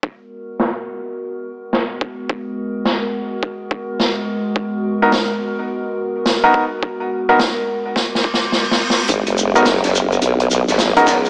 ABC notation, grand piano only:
X:1
M:4/4
L:1/16
Q:"Swing 16ths" 1/4=106
K:G#m
V:1 name="Grand piano"
z16 | z16 | z3 [B,DFA] z8 z [B,DFA] z2 | z3 [B,DFA] z12 |
z3 [B,DFA] z8 z [B,DFA] z2 |]